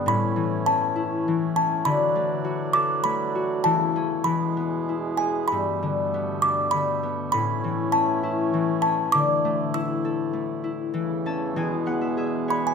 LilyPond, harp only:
<<
  \new Staff \with { instrumentName = "Harp" } { \time 3/4 \key a \major \tempo 4 = 100 r2. | r2. | r2. | r2. |
r2. | r2. | r8 a''8 gis''8 fis''16 e''16 e''8 cis''8 | }
  \new Staff \with { instrumentName = "Harp" } { \time 3/4 \key a \major a,8 e8 cis'8 e'8 e8 cis'8 | d8 a8 fis'8 a'8 a8 fis'8 | e8 cis'8 e8 b8 e'8 gis'8 | g,8 d8 b8 d'8 d8 b8 |
a,8 e8 cis'8 e'8 e8 cis'8 | d8 a8 e'8 a'8 a8 e'8 | e8 cis'8 e8 b8 gis'8 b'8 | }
>>